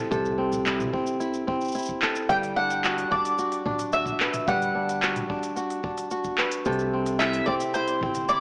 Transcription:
0.00 0.37 C4 medium
0.00 0.65 E4 medium
0.00 0.11 A4 medium
0.11 0.87 C2 medium
0.11 2.34 C3 medium
0.11 2.01 A4 medium
0.11 kick loud
0.11 mid tom medium
0.11 cabasa medium
0.25 cabasa soft
0.38 0.92 C4 medium
0.53 mid tom medium
0.53 cabasa medium
0.65 1.20 E4 medium
0.65 clap medium
0.65 cabasa medium
0.80 mid tom medium
0.80 cabasa soft
0.84 mid tom medium
0.87 mid tom soft
0.90 1.47 C4 medium
0.90 kick loud
0.90 mid tom soft
1.07 cabasa medium
1.20 1.74 E4 medium
1.20 cabasa medium
1.34 cabasa soft
1.47 2.36 C4 medium
1.47 kick loud
1.61 cabasa soft
1.64 cabasa soft
1.68 cabasa soft
1.72 cabasa soft
1.75 3.32 E4 medium
1.75 cabasa medium
1.78 cabasa medium
1.82 cabasa medium
1.85 kick medium
1.85 cabasa medium
2.02 3.34 A4 medium
2.02 clap medium
2.16 cabasa medium
2.29 3.05 G1 medium
2.29 4.47 G3 medium
2.29 4.20 B4 medium
2.29 2.37 G5 loud
2.29 kick loud
2.29 cabasa medium
2.43 open hi-hat soft
2.43 cabasa soft
2.56 3.10 D4 medium
2.56 3.13 F#5 loud
2.71 open hi-hat medium
2.71 cabasa medium
2.84 3.38 F#4 medium
2.84 clap medium
2.84 cabasa medium
2.98 open hi-hat soft
2.98 cabasa soft
3.11 3.65 D4 medium
3.11 3.93 D5 medium
3.11 kick loud
3.25 open hi-hat medium
3.25 cabasa medium
3.38 3.93 F#4 medium
3.38 cabasa medium
3.52 open hi-hat soft
3.52 cabasa soft
3.65 4.14 D1 medium
3.65 4.74 D4 medium
3.65 kick medium
3.65 mid tom medium
3.79 open hi-hat medium
3.79 cabasa medium
3.93 5.02 F#4 medium
3.93 4.49 E5 medium
3.93 cabasa medium
4.06 kick medium
4.06 mid tom medium
4.06 cabasa soft
4.20 4.48 B4 medium
4.20 clap medium
4.34 mid tom medium
4.34 open hi-hat medium
4.34 cabasa medium
4.48 5.23 G1 medium
4.48 6.66 G3 medium
4.48 6.37 B4 medium
4.48 5.53 F#5 medium
4.48 kick loud
4.48 mid tom medium
4.48 cabasa medium
4.62 open hi-hat soft
4.62 cabasa soft
4.75 5.29 D4 medium
4.89 open hi-hat medium
4.89 cabasa medium
5.02 5.56 F#4 medium
5.02 clap medium
5.02 cabasa medium
5.16 mid tom medium
5.16 open hi-hat soft
5.16 cabasa soft
5.30 5.83 D4 medium
5.30 kick loud
5.43 open hi-hat medium
5.43 cabasa medium
5.56 6.11 F#4 medium
5.56 cabasa medium
5.70 open hi-hat soft
5.70 cabasa soft
5.84 7.52 D4 medium
5.84 kick loud
5.98 open hi-hat medium
5.98 cabasa medium
6.11 7.57 F#4 medium
6.11 cabasa medium
6.24 kick medium
6.24 cabasa soft
6.38 6.72 B4 medium
6.38 clap medium
6.52 open hi-hat medium
6.52 cabasa medium
6.65 7.41 C2 medium
6.65 8.40 C3 medium
6.65 8.40 A4 medium
6.65 kick loud
6.65 cabasa medium
6.72 open hi-hat soft
6.79 cabasa soft
6.93 7.47 C4 medium
7.06 open hi-hat medium
7.06 cabasa medium
7.19 7.75 E4 medium
7.19 7.45 E5 loud
7.19 clap medium
7.19 cabasa medium
7.33 open hi-hat soft
7.33 cabasa soft
7.46 8.02 C4 medium
7.46 7.54 D5 medium
7.46 kick medium
7.60 open hi-hat medium
7.60 cabasa medium
7.74 8.29 E4 medium
7.74 8.28 C5 medium
7.74 cabasa medium
7.88 open hi-hat soft
7.88 cabasa soft
8.01 8.40 G1 medium
8.01 8.40 C4 medium
8.01 kick loud
8.01 mid tom medium
8.15 open hi-hat medium
8.15 cabasa medium
8.29 8.40 E4 medium
8.29 8.40 D5 loud
8.29 cabasa medium

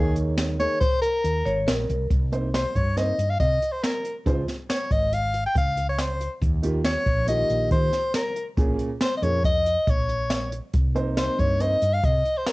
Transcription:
0.00 0.65 D#2 loud
0.00 0.54 D#3 medium
0.00 0.54 A#3 medium
0.00 0.16 G#4 medium
0.00 0.55 G#4 medium
0.00 0.55 C#5 medium
0.16 closed hi-hat medium
0.37 snare loud
0.37 closed hi-hat medium
0.59 0.74 D#3 medium
0.59 0.74 A#3 medium
0.59 0.75 G#4 medium
0.59 0.79 C#5 medium
0.59 0.75 C#5 medium
0.59 closed hi-hat soft
0.80 1.00 C5 medium
0.80 kick medium
0.80 closed hi-hat medium
1.01 1.62 A#4 medium
1.01 closed hi-hat medium
1.24 1.42 D#2 medium
1.24 closed hi-hat medium
1.46 1.65 G#1 medium
1.46 1.68 C#5 loud
1.46 closed hi-hat medium
1.67 1.87 A#1 medium
1.67 2.07 A#4 medium
1.67 snare loud
1.67 closed hi-hat medium
1.89 2.09 C2 medium
1.89 closed hi-hat soft
2.10 2.64 C2 medium
2.10 kick medium
2.10 closed hi-hat medium
2.32 2.47 C3 medium
2.32 2.47 A#3 medium
2.32 2.47 D#4 medium
2.32 2.47 C5 medium
2.32 closed hi-hat medium
2.54 2.77 C5 medium
2.54 snare medium
2.54 closed hi-hat medium
2.75 3.11 G2 medium
2.75 2.99 C#5 medium
2.75 kick medium
2.75 closed hi-hat medium
2.96 3.12 C3 medium
2.96 3.12 A#3 medium
2.96 3.12 D#4 medium
2.96 3.12 C5 medium
2.96 3.31 D#5 medium
2.96 snare soft
2.96 closed hi-hat medium
3.18 3.36 G2 medium
3.18 closed hi-hat medium
3.30 3.39 F5 medium
3.40 3.58 C3 medium
3.40 3.73 D#5 medium
3.40 kick medium
3.40 closed hi-hat medium
3.62 closed hi-hat medium
3.72 3.85 C5 medium
3.83 4.15 A#4 medium
3.83 snare medium
3.83 closed hi-hat medium
4.04 closed hi-hat soft
4.26 4.44 C#2 medium
4.26 4.41 C#3 medium
4.26 4.41 G#3 medium
4.26 4.41 F4 medium
4.26 4.42 C5 medium
4.26 kick medium
4.26 closed hi-hat medium
4.48 snare soft
4.48 closed hi-hat soft
4.69 4.93 C#5 medium
4.69 snare medium
4.69 closed hi-hat medium
4.91 5.44 G#1 medium
4.91 5.15 D#5 medium
4.91 kick medium
4.91 closed hi-hat medium
5.12 5.45 F5 medium
5.12 closed hi-hat medium
5.34 closed hi-hat medium
5.46 5.56 G5 medium
5.55 6.27 C#2 medium
5.55 5.87 F5 medium
5.55 kick loud
5.55 closed hi-hat medium
5.77 closed hi-hat medium
5.89 6.02 C#5 medium
5.98 6.32 C5 medium
5.98 snare medium
5.98 closed hi-hat medium
6.21 closed hi-hat medium
6.42 6.95 D#2 medium
6.42 kick medium
6.42 closed hi-hat medium
6.63 6.78 D#3 medium
6.63 6.78 A#3 medium
6.63 6.79 F4 medium
6.63 6.79 G4 medium
6.63 closed hi-hat medium
6.85 7.25 C#5 medium
6.85 snare medium
6.85 closed hi-hat medium
7.06 7.42 A#1 medium
7.06 kick medium
7.06 closed hi-hat soft
7.27 7.88 D#3 medium
7.27 7.88 A#3 medium
7.27 7.89 F4 medium
7.27 7.89 G4 medium
7.27 7.69 D#5 medium
7.27 closed hi-hat medium
7.49 7.68 A#1 medium
7.49 closed hi-hat medium
7.71 7.89 D#3 medium
7.71 8.12 C5 medium
7.71 kick medium
7.71 closed hi-hat medium
7.93 snare soft
7.93 closed hi-hat soft
8.14 8.45 A#4 medium
8.14 snare medium
8.14 closed hi-hat medium
8.36 closed hi-hat soft
8.57 8.75 A#1 medium
8.57 8.88 A#2 medium
8.57 8.88 A#3 medium
8.57 8.88 C#4 medium
8.57 8.88 G#4 medium
8.57 kick loud
8.57 closed hi-hat medium
8.79 closed hi-hat medium
9.01 9.16 C5 medium
9.01 snare medium
9.01 closed hi-hat medium
9.17 9.25 D#5 medium
9.22 9.76 F2 medium
9.22 9.37 A#2 medium
9.22 9.38 A#3 medium
9.22 9.38 C#4 medium
9.22 9.38 G#4 medium
9.22 9.44 C#5 medium
9.22 closed hi-hat medium
9.44 9.91 D#5 medium
9.44 kick medium
9.44 closed hi-hat medium
9.66 closed hi-hat medium
9.87 10.59 A#1 medium
9.87 10.53 C#5 medium
9.87 kick medium
9.87 closed hi-hat medium
10.09 closed hi-hat soft
10.30 snare medium
10.30 closed hi-hat medium
10.52 closed hi-hat medium
10.73 11.27 C2 medium
10.73 kick medium
10.73 closed hi-hat medium
10.95 11.56 C3 medium
10.95 11.56 A#3 medium
10.95 11.56 D#4 medium
10.95 11.56 C5 medium
10.95 closed hi-hat soft
11.17 11.41 C5 medium
11.17 snare medium
11.17 closed hi-hat medium
11.39 11.74 G2 medium
11.39 11.62 C#5 medium
11.39 kick medium
11.39 closed hi-hat medium
11.60 11.75 C3 medium
11.60 11.75 A#3 medium
11.60 11.76 D#4 soft
11.60 11.76 C5 medium
11.60 11.95 D#5 medium
11.60 closed hi-hat medium
11.82 12.00 G2 medium
11.82 closed hi-hat medium
11.93 12.06 F5 medium
12.03 12.21 C3 medium
12.03 12.39 D#5 medium
12.03 kick loud
12.03 closed hi-hat medium
12.25 closed hi-hat soft
12.37 12.50 C5 medium
12.46 12.52 A#4 medium
12.46 snare loud
12.46 closed hi-hat medium

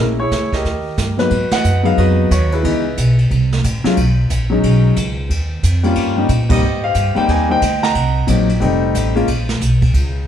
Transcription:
0.00 0.30 A#1 medium
0.00 0.16 G#3 soft
0.00 0.17 A#3 soft
0.00 0.17 C#4 medium
0.00 0.17 E4 medium
0.20 0.63 E4 medium
0.20 0.63 G#4 medium
0.20 0.54 C#5 medium
0.31 0.64 C#2 medium
0.31 kick soft
0.31 snare soft
0.31 hi-hat pedal soft
0.53 1.17 G4 medium
0.53 1.17 A#4 medium
0.53 0.95 D#5 medium
0.53 kick soft
0.53 snare soft
0.64 0.97 D#2 medium
0.64 brush sweep soft
0.64 kick soft
0.64 snare soft
0.97 1.30 G2 medium
0.97 kick soft
0.97 snare medium
0.97 hi-hat pedal soft
1.17 1.29 G#2 medium
1.17 1.29 F#3 medium
1.17 1.30 A#3 medium
1.17 1.30 B3 medium
1.17 1.30 D#4 medium
1.17 1.83 F#4 medium
1.17 1.50 B4 loud
1.17 snare soft
1.30 1.50 G#2 medium
1.30 kick soft
1.30 ride medium
1.51 1.98 B4 medium
1.51 1.97 D#5 medium
1.51 1.87 F#5 loud
1.51 muted upright bass stroke soft
1.51 snare medium
1.51 ride medium
1.64 1.97 F#2 medium
1.64 hi-hat pedal medium
1.83 2.27 F#3 medium
1.83 2.28 G#3 medium
1.83 2.28 B3 medium
1.83 2.28 D#4 medium
1.83 1.98 F5 loud
1.83 ride soft
1.98 2.30 F2 medium
1.98 2.61 F#4 medium
1.98 2.51 B4 medium
1.98 2.29 D#5 medium
1.98 kick soft
1.98 ride medium
2.31 2.63 D#2 loud
2.31 2.53 C#5 medium
2.31 kick soft
2.31 hi-hat pedal medium
2.31 ride medium
2.52 3.15 E4 medium
2.52 3.15 G#4 medium
2.52 3.15 B4 medium
2.52 ride soft
2.63 2.96 C#2 medium
2.63 2.82 E3 medium
2.63 2.83 G#3 medium
2.63 2.83 B3 medium
2.63 2.83 D#4 medium
2.63 kick soft
2.63 ride medium
2.97 3.30 B1 medium
2.97 kick soft
2.97 hi-hat pedal medium
2.97 ride medium
3.18 ride soft
3.31 3.63 C2 medium
3.31 kick soft
3.31 ride medium
3.53 snare medium
3.64 3.83 A1 medium
3.64 kick soft
3.64 hi-hat pedal medium
3.64 ride medium
3.84 3.96 F#3 medium
3.84 3.96 G#3 medium
3.84 3.96 C#4 medium
3.84 3.97 F4 medium
3.84 muted upright bass stroke soft
3.84 snare medium
3.84 ride soft
3.97 4.29 B1 medium
3.97 kick soft
3.97 ride medium
4.30 4.62 A#1 medium
4.30 kick soft
4.30 hi-hat pedal medium
4.30 ride medium
4.50 4.93 F#3 medium
4.50 4.94 G#3 medium
4.50 4.94 C#4 medium
4.50 4.95 D#4 medium
4.63 4.96 B1 medium
4.63 kick soft
4.63 ride medium
4.96 5.29 C#2 medium
4.96 kick soft
4.96 hi-hat pedal medium
4.96 ride medium
5.30 5.62 D#2 medium
5.30 kick soft
5.30 ride medium
5.63 5.95 F2 medium
5.63 kick soft
5.63 hi-hat pedal medium
5.63 ride medium
5.83 6.15 G3 medium
5.83 6.15 A#3 medium
5.83 6.16 C#4 medium
5.83 6.16 F4 medium
5.83 ride soft
5.96 kick soft
5.96 ride medium
6.17 6.28 G3 medium
6.17 6.28 A#3 medium
6.17 6.28 C#4 medium
6.17 6.29 D#4 medium
6.29 6.61 A#2 medium
6.29 kick soft
6.29 hi-hat pedal soft
6.29 ride medium
6.49 6.61 G3 medium
6.49 6.61 A#3 medium
6.49 6.61 C4 medium
6.49 6.62 D#4 medium
6.49 7.14 G4 medium
6.49 6.83 C5 medium
6.49 6.85 D#5 medium
6.49 kick medium
6.49 crash medium
6.61 6.94 G#2 medium
6.84 7.28 C5 medium
6.84 7.15 F5 loud
6.95 7.15 G2 medium
6.95 kick soft
6.95 hi-hat pedal medium
6.95 ride medium
7.15 7.47 G3 medium
7.15 7.47 A#3 medium
7.15 7.48 C4 medium
7.15 7.48 D#4 medium
7.15 7.30 G5 medium
7.15 muted upright bass stroke soft
7.15 ride soft
7.28 7.61 D#2 medium
7.28 7.50 C5 medium
7.28 7.49 D#5 medium
7.28 7.49 G#5 medium
7.28 kick soft
7.28 ride medium
7.49 7.60 G3 medium
7.49 7.60 A#3 medium
7.49 7.61 C4 medium
7.49 7.61 D#4 medium
7.49 7.93 C5 medium
7.49 7.82 D#5 medium
7.49 7.85 G5 loud
7.62 7.94 D2 loud
7.62 kick soft
7.62 hi-hat pedal medium
7.62 ride medium
7.83 8.46 D#5 medium
7.83 8.45 F#5 medium
7.83 8.45 A#5 loud
7.83 snare medium
7.95 8.27 C2 medium
7.95 kick soft
7.95 ride medium
8.27 8.60 A#1 medium
8.27 8.47 F#3 medium
8.27 8.47 A#3 medium
8.27 8.47 C4 medium
8.27 8.48 D#4 medium
8.27 kick soft
8.27 hi-hat pedal soft
8.27 ride medium
8.49 ride soft
8.60 8.94 F1 medium
8.60 9.11 G3 medium
8.60 9.12 A3 medium
8.60 9.12 C4 medium
8.60 9.12 D#4 medium
8.60 kick soft
8.60 ride medium
8.95 9.27 A1 loud
8.95 kick soft
8.95 hi-hat pedal medium
8.95 ride medium
9.15 9.26 G#3 medium
9.15 9.27 A#3 medium
9.15 9.27 C#4 medium
9.15 9.27 F4 medium
9.15 ride soft
9.28 9.60 A#1 medium
9.28 kick soft
9.28 ride medium
9.49 snare medium
9.61 9.93 B1 medium
9.61 kick soft
9.61 hi-hat pedal medium
9.61 ride medium
9.82 kick medium
9.82 ride medium
9.94 10.26 C#2 medium
9.94 kick soft
9.94 ride medium

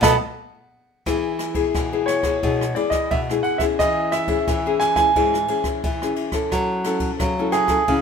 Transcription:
0.01 0.15 B2 loud
0.01 0.15 F#3 medium
0.01 0.14 A3 medium
0.01 0.15 B3 loud
0.01 0.14 A4 medium
0.01 0.14 B4 medium
0.01 0.14 D#5 medium
0.01 0.14 F#5 medium
0.01 0.14 A5 medium
0.01 0.14 B5 medium
0.01 kick medium
0.01 snare medium
1.06 1.71 E3 medium
1.06 1.52 B3 medium
1.06 1.52 E4 medium
1.06 1.53 G#4 medium
1.06 kick medium
1.06 cross-stick medium
1.06 ride soft
1.39 cross-stick medium
1.39 ride soft
1.54 1.85 B3 medium
1.54 1.85 E4 medium
1.54 1.85 G#4 medium
1.54 kick medium
1.54 ride medium
1.74 2.39 B2 medium
1.74 2.33 E3 medium
1.74 kick medium
1.74 cross-stick medium
1.74 ride soft
1.92 2.21 B3 medium
1.92 2.21 E4 soft
1.92 2.21 G#4 medium
2.06 2.72 C#5 medium
2.06 cross-stick medium
2.06 ride soft
2.23 2.36 B3 medium
2.23 2.36 E4 soft
2.23 2.37 G#4 medium
2.23 kick medium
2.23 cross-stick medium
2.23 ride soft
2.43 2.72 B2 medium
2.43 3.08 E3 medium
2.43 2.63 B3 medium
2.43 2.63 E4 medium
2.43 2.63 G#4 medium
2.43 kick medium
2.43 ride soft
2.61 cross-stick medium
2.75 3.22 B3 medium
2.75 3.22 E4 medium
2.75 3.23 G#4 medium
2.75 2.94 D5 medium
2.75 ride soft
2.90 3.10 D#5 medium
2.90 kick medium
2.90 cross-stick medium
2.90 ride soft
3.11 3.76 B2 soft
3.11 3.19 E5 medium
3.11 kick medium
3.11 ride soft
3.29 3.58 B3 medium
3.29 3.58 E4 medium
3.29 3.58 G#4 medium
3.29 cross-stick medium
3.43 3.62 F#5 medium
3.43 ride soft
3.58 4.24 C#4 medium
3.58 4.24 E4 medium
3.58 4.24 G#4 medium
3.58 3.63 E5 medium
3.58 kick medium
3.58 cross-stick medium
3.58 ride soft
3.79 4.45 E3 medium
3.79 4.11 D#5 medium
3.79 kick medium
3.79 cross-stick medium
3.79 ride soft
4.12 4.83 E5 medium
4.12 cross-stick medium
4.12 ride soft
4.28 4.58 C#4 medium
4.28 4.58 E4 medium
4.28 4.58 G#4 medium
4.28 kick medium
4.28 ride medium
4.47 5.12 E3 medium
4.47 kick medium
4.47 cross-stick medium
4.47 ride soft
4.66 4.94 C#4 medium
4.66 4.94 E4 medium
4.66 4.94 G#4 medium
4.80 4.95 G#5 loud
4.80 cross-stick medium
4.80 ride soft
4.96 5.09 C#4 medium
4.96 5.09 E4 medium
4.96 5.10 G#4 medium
4.96 5.62 G#5 loud
4.96 kick medium
4.96 cross-stick medium
4.96 ride soft
5.16 5.45 G#2 medium
5.16 5.81 E3 medium
5.16 5.36 C#4 medium
5.16 5.36 E4 medium
5.16 5.36 G#4 medium
5.16 kick medium
5.16 ride soft
5.34 cross-stick medium
5.48 5.81 C#4 medium
5.48 5.81 E4 medium
5.48 5.82 G#4 medium
5.48 ride soft
5.64 kick medium
5.64 cross-stick medium
5.64 ride soft
5.84 6.49 E3 soft
5.84 kick medium
5.84 ride medium
6.02 6.30 C#4 medium
6.02 6.30 E4 medium
6.02 6.31 G#4 medium
6.02 cross-stick medium
6.16 ride soft
6.32 6.84 C#4 medium
6.32 6.85 E4 medium
6.32 6.85 A4 medium
6.32 kick medium
6.32 cross-stick medium
6.32 ride soft
6.51 7.17 F#3 medium
6.51 kick medium
6.51 cross-stick medium
6.51 ride soft
6.84 7.31 C#4 medium
6.84 7.32 E4 medium
6.84 7.32 A4 medium
6.84 cross-stick medium
6.84 ride soft
7.00 kick medium
7.00 ride medium
7.19 7.85 C#3 medium
7.19 7.78 F#3 medium
7.19 kick medium
7.19 cross-stick medium
7.19 ride soft
7.39 7.67 C#4 medium
7.39 7.67 E4 medium
7.39 7.67 A4 medium
7.52 8.02 G#4 medium
7.52 cross-stick medium
7.52 ride soft
7.68 7.81 C#4 medium
7.68 7.82 E4 medium
7.68 7.82 A4 medium
7.68 kick medium
7.68 cross-stick medium
7.68 ride soft
7.88 8.02 C#3 medium
7.88 8.02 F#3 medium
7.88 8.02 C#4 soft
7.88 8.02 E4 medium
7.88 kick medium
7.88 ride soft

